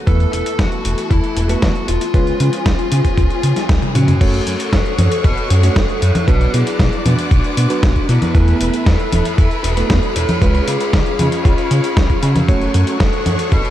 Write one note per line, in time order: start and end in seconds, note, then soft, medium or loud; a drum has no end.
0.07 0.26 E2 loud
0.07 2.12 E3 medium
0.07 1.46 A3 medium
0.07 2.12 A3 medium
0.07 1.46 B3 medium
0.07 4.17 B3 medium
0.07 1.46 E4 medium
0.07 0.32 A4 loud
0.07 2.12 A4 medium
0.07 1.46 B4 loud
0.07 kick loud
0.07 closed hi-hat soft
0.20 closed hi-hat soft
0.33 0.43 E1 medium
0.33 0.60 A4 loud
0.33 closed hi-hat medium
0.46 closed hi-hat medium
0.59 0.68 E2 loud
0.59 1.10 F#4 loud
0.59 kick loud
0.59 snare loud
0.59 closed hi-hat medium
0.72 closed hi-hat soft
0.85 0.94 E1 loud
0.85 closed hi-hat medium
0.98 closed hi-hat medium
1.11 1.20 E2 medium
1.11 1.49 E4 medium
1.11 kick loud
1.11 closed hi-hat medium
1.24 closed hi-hat soft
1.37 1.56 E1 medium
1.37 closed hi-hat medium
1.49 1.69 A3 medium
1.49 1.69 B3 medium
1.49 1.69 E4 medium
1.49 1.85 F#4 loud
1.49 1.69 B4 medium
1.49 closed hi-hat soft
1.62 1.72 E2 loud
1.62 kick loud
1.62 snare loud
1.62 closed hi-hat medium
1.75 closed hi-hat soft
1.88 1.98 E1 loud
1.88 3.65 F4 medium
1.88 closed hi-hat medium
2.01 closed hi-hat medium
2.14 2.33 C#2 loud
2.14 4.19 F3 medium
2.14 3.53 G#3 medium
2.14 3.53 C#4 medium
2.14 4.19 C#4 medium
2.14 3.53 F4 medium
2.14 4.19 G#4 medium
2.14 3.53 B4 medium
2.14 kick loud
2.14 closed hi-hat medium
2.27 closed hi-hat soft
2.40 2.50 C#3 medium
2.40 closed hi-hat medium
2.53 closed hi-hat medium
2.66 2.75 C#2 loud
2.66 kick loud
2.66 snare loud
2.66 closed hi-hat medium
2.79 closed hi-hat soft
2.92 3.01 C#3 loud
2.92 closed hi-hat medium
3.05 kick medium
3.05 closed hi-hat medium
3.18 3.27 C#2 loud
3.18 kick loud
3.18 closed hi-hat medium
3.30 closed hi-hat soft
3.43 3.53 C#3 medium
3.43 closed hi-hat medium
3.56 snare soft
3.56 closed hi-hat medium
3.69 3.79 C#2 medium
3.69 kick loud
3.69 snare loud
3.69 closed hi-hat medium
3.82 closed hi-hat soft
3.82 high tom medium
3.95 4.14 C#3 loud
3.95 4.69 C#4 medium
3.95 4.72 F#4 loud
3.95 closed hi-hat medium
3.95 mid tom medium
4.08 closed hi-hat medium
4.08 mid tom medium
4.21 4.40 F#1 loud
4.21 5.60 A3 medium
4.21 5.60 C#4 medium
4.21 5.60 F#4 medium
4.21 6.26 A4 medium
4.21 5.60 C#5 loud
4.21 6.26 C#5 medium
4.21 8.31 F#5 medium
4.21 6.26 C#6 medium
4.21 kick loud
4.21 closed hi-hat medium
4.21 crash loud
4.34 closed hi-hat soft
4.47 4.56 F#2 medium
4.47 closed hi-hat loud
4.60 closed hi-hat medium
4.73 4.82 F#1 loud
4.73 5.21 F#4 medium
4.73 5.24 A4 loud
4.73 kick loud
4.73 snare loud
4.73 closed hi-hat medium
4.86 closed hi-hat soft
4.99 5.08 F#2 loud
4.99 closed hi-hat medium
4.99 high conga medium
5.12 closed hi-hat medium
5.24 5.34 F#1 medium
5.24 5.49 F#4 medium
5.24 5.50 B4 loud
5.24 kick loud
5.24 closed hi-hat medium
5.38 closed hi-hat soft
5.50 5.69 F#2 loud
5.50 5.99 F#4 medium
5.50 5.98 A4 loud
5.50 closed hi-hat loud
5.63 5.82 A3 medium
5.63 5.82 C#4 medium
5.63 5.82 F#4 medium
5.63 5.82 C#5 medium
5.63 closed hi-hat medium
5.76 5.86 F#1 loud
5.76 kick loud
5.76 snare loud
5.76 closed hi-hat medium
5.89 closed hi-hat soft
6.02 6.12 F#2 medium
6.02 6.26 A4 medium
6.02 6.29 C#5 loud
6.02 closed hi-hat medium
6.15 closed hi-hat medium
6.15 high conga medium
6.28 6.47 B1 loud
6.28 7.67 F#3 medium
6.28 7.67 B3 medium
6.28 7.67 D4 medium
6.28 6.52 F#4 medium
6.28 6.52 B4 loud
6.28 10.38 B4 medium
6.28 7.67 B4 medium
6.28 8.33 D5 medium
6.28 8.33 D6 medium
6.28 kick loud
6.28 closed hi-hat medium
6.41 closed hi-hat soft
6.54 6.63 B2 loud
6.54 7.02 E4 medium
6.54 7.02 G#4 loud
6.54 closed hi-hat loud
6.67 closed hi-hat medium
6.79 6.89 B1 loud
6.79 kick loud
6.79 snare loud
6.79 closed hi-hat medium
6.93 closed hi-hat soft
7.05 7.15 B2 loud
7.05 7.30 D4 medium
7.05 7.29 F#4 loud
7.05 closed hi-hat loud
7.05 high conga medium
7.19 closed hi-hat medium
7.31 7.41 B1 loud
7.31 8.05 D4 medium
7.31 8.05 F#4 loud
7.31 kick loud
7.31 closed hi-hat medium
7.44 closed hi-hat soft
7.57 7.67 B2 medium
7.57 closed hi-hat loud
7.70 7.89 F#3 medium
7.70 7.89 B3 medium
7.70 7.89 D4 medium
7.70 7.89 B4 medium
7.70 closed hi-hat medium
7.83 7.93 B1 loud
7.83 kick loud
7.83 snare loud
7.83 closed hi-hat medium
7.96 kick medium
7.96 closed hi-hat soft
8.09 8.18 B2 loud
8.09 8.83 B3 medium
8.09 8.82 E4 loud
8.09 closed hi-hat loud
8.22 closed hi-hat medium
8.22 high conga medium
8.35 8.54 E2 loud
8.35 9.74 A3 medium
8.35 9.74 B3 medium
8.35 9.74 E4 medium
8.35 10.40 A4 medium
8.35 9.74 B4 loud
8.35 10.40 E5 medium
8.35 12.45 B5 medium
8.35 kick loud
8.35 closed hi-hat medium
8.48 closed hi-hat soft
8.61 8.70 E1 medium
8.61 closed hi-hat medium
8.74 closed hi-hat medium
8.86 8.96 E2 loud
8.86 9.35 E4 medium
8.86 9.34 A4 loud
8.86 kick loud
8.86 snare loud
8.86 closed hi-hat medium
8.99 closed hi-hat soft
9.12 9.22 E1 loud
9.12 closed hi-hat loud
9.12 high conga medium
9.25 closed hi-hat medium
9.38 9.48 E2 medium
9.38 9.63 E4 medium
9.38 9.62 B4 loud
9.38 kick loud
9.38 closed hi-hat medium
9.51 closed hi-hat soft
9.64 9.83 E1 loud
9.64 10.13 F#4 medium
9.64 10.12 A4 loud
9.64 closed hi-hat medium
9.77 9.96 A3 medium
9.77 9.96 B3 medium
9.77 9.96 E4 medium
9.77 9.96 B4 medium
9.77 closed hi-hat medium
9.90 9.99 E2 loud
9.90 kick loud
9.90 snare loud
9.90 closed hi-hat medium
10.03 closed hi-hat soft
10.16 10.25 E1 medium
10.16 10.40 A4 medium
10.16 10.40 C#5 loud
10.16 closed hi-hat medium
10.29 closed hi-hat medium
10.29 high conga medium
10.42 10.61 C#2 loud
10.42 11.81 G#3 medium
10.42 11.81 C#4 medium
10.42 11.81 F4 medium
10.42 12.46 G#4 medium
10.42 10.66 G#4 medium
10.42 11.81 B4 medium
10.42 10.68 B4 loud
10.42 12.46 C#5 medium
10.42 12.46 F5 medium
10.42 kick loud
10.42 closed hi-hat medium
10.55 closed hi-hat soft
10.68 10.77 C#3 medium
10.68 11.16 F4 medium
10.68 11.21 G#4 loud
10.68 closed hi-hat medium
10.81 closed hi-hat medium
10.93 11.03 C#2 loud
10.93 kick loud
10.93 snare loud
10.93 closed hi-hat medium
11.06 closed hi-hat soft
11.19 11.29 C#3 loud
11.19 11.44 C#4 medium
11.19 11.44 F4 medium
11.19 closed hi-hat medium
11.19 high conga medium
11.32 closed hi-hat medium
11.45 11.55 C#2 loud
11.45 12.19 C#4 medium
11.45 12.22 F4 medium
11.45 kick loud
11.45 closed hi-hat medium
11.58 closed hi-hat soft
11.71 11.81 C#3 medium
11.71 closed hi-hat medium
11.84 closed hi-hat medium
11.97 12.06 C#2 loud
11.97 kick loud
11.97 snare loud
11.97 closed hi-hat medium
12.10 kick medium
12.10 closed hi-hat soft
12.23 12.42 C#3 loud
12.23 12.97 C#4 medium
12.23 13.00 F#4 loud
12.23 closed hi-hat medium
12.36 closed hi-hat medium
12.36 high conga medium
12.48 12.68 F#1 loud
12.48 13.70 A3 medium
12.48 13.70 C#4 medium
12.48 13.70 F#4 medium
12.48 13.70 A4 medium
12.48 13.70 C#5 medium
12.48 13.70 F#5 medium
12.48 13.70 C#6 medium
12.48 kick loud
12.48 closed hi-hat soft
12.61 closed hi-hat soft
12.74 12.84 F#2 medium
12.74 closed hi-hat medium
12.87 closed hi-hat medium
13.00 13.10 F#1 loud
13.00 13.49 F#4 medium
13.00 13.48 A4 loud
13.00 kick loud
13.00 snare loud
13.00 closed hi-hat soft
13.13 closed hi-hat soft
13.26 13.36 F#2 loud
13.26 closed hi-hat medium
13.26 high conga medium
13.39 closed hi-hat medium
13.52 13.61 F#1 medium
13.52 13.70 F#4 medium
13.52 13.70 B4 loud
13.52 kick loud
13.52 closed hi-hat medium
13.65 closed hi-hat soft